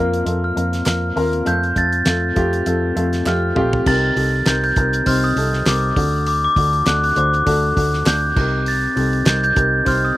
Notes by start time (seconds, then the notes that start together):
Already playing: F2 A#3 C4 F4 A#4 F6
0.13 closed hi-hat
0.25 F2 A#3 C4 F4 A4, closed hi-hat
0.44 F6
0.55 F2 A#3 C4 F4 A#4, closed hi-hat
0.73 snare, closed hi-hat
0.86 F2 A#3 C4 F4 A#4 F6, snare, clap, closed hi-hat
1.16 D#2 A#3 C4 F4 A#4, open hi-hat
1.33 closed hi-hat
1.45 F2 A3 C4 F4 A4 G6, closed hi-hat
1.63 closed hi-hat
1.76 F2 A3 C4 F4 A4 A6, kick, closed hi-hat
1.93 closed hi-hat
2.06 F2 A3 C4 F4 A4, snare, clap, closed hi-hat
2.35 F2 A3 C4 F4 G4, kick, closed hi-hat
2.53 closed hi-hat
2.66 F2 A3 C4 F4 A4, closed hi-hat
2.96 F2 A3 C4 F4 A4, closed hi-hat
3.13 snare, closed hi-hat
3.25 F2 A3 C4 F4 G4 F6, snare, clap
3.56 A#1 A3 C4 F4 G4, mid tom
3.73 floor tom
3.86 C2 C3 C4 D#4 G4 A#4 A6, kick, crash
4.16 C2 C4 D#4 G4 A4, hi-hat pedal, open hi-hat
4.46 C2 C4 D#4 G4 A#4 G6, snare, clap, hi-hat pedal, open hi-hat
4.64 G6, open hi-hat
4.76 C2 C4 D#4 G4 A#4, kick, hi-hat pedal, open hi-hat
4.93 hi-hat pedal
5.06 C2 C4 D#4 G4 C5 F6, kick, hi-hat pedal, open hi-hat
5.24 D#6
5.36 C2 C4 D#4 G4 A4, hi-hat pedal, open hi-hat
5.53 snare
5.66 C2 C4 D#4 G4 A#4 D6, snare, clap, hi-hat pedal, open hi-hat
5.96 D2 D3 A3 D4 F#4 A4, kick, hi-hat pedal, open hi-hat
6.26 D6, hi-hat pedal, open hi-hat
6.44 D6
6.56 D2 A3 D4 F#4 A4, kick, hi-hat pedal, open hi-hat
6.73 open hi-hat
6.86 D2 A3 D4 F#4 A4 F#6, snare, clap, hi-hat pedal, open hi-hat
7.03 F#6, hi-hat pedal, open hi-hat
7.16 D2 A3 D4 F#4 C5 D6, hi-hat pedal, open hi-hat
7.33 hi-hat pedal
7.46 D2 A3 D4 F#4 A4, kick, hi-hat pedal, open hi-hat
7.76 D2 A3 D4 F#4 A4, kick, hi-hat pedal, open hi-hat
7.93 snare
8.06 D2 A3 D4 F#4 A4 G6, snare, clap, hi-hat pedal, open hi-hat
8.36 C2 C3 C4 D#4 G4 A#4, kick, crash
8.66 A6, hi-hat pedal, open hi-hat
8.96 C2 C4 D#4 G4 A4, hi-hat pedal, open hi-hat
9.13 open hi-hat
9.26 C2 C4 D#4 G4 A#4 G6, snare, clap, hi-hat pedal, open hi-hat
9.43 G6, hi-hat pedal
9.55 C2 C4 D#4 G4 A#4, kick, hi-hat pedal, open hi-hat
9.85 C2 C4 D#4 G4 C5 F6, kick, hi-hat pedal, open hi-hat
10.05 D#6